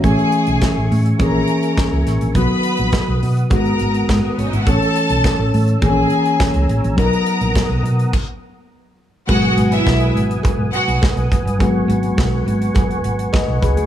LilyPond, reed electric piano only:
<<
  \new Staff \with { instrumentName = "Reed electric piano" } { \time 4/4 \key gis \minor \tempo 4 = 104 r1 | r1 | r1 | r1 |
r1 | r2. <b' dis''>8 <gis' b'>16 gis'16 | }
  \new Staff \with { instrumentName = "Reed electric piano" } { \time 4/4 \key gis \minor <e a cis' gis'>2 <e ais cis' gis'>2 | <dis fis b fis'>2 <dis gis b fis'>2 | <e a cis' a'>2 <e ais b cis' gis'>2 | <fis b dis' ais'>2 r2 |
<b, fis gis b fis'>1 | <dis fis gis b fis'>2.~ <dis fis gis b fis'>8 r8 | }
>>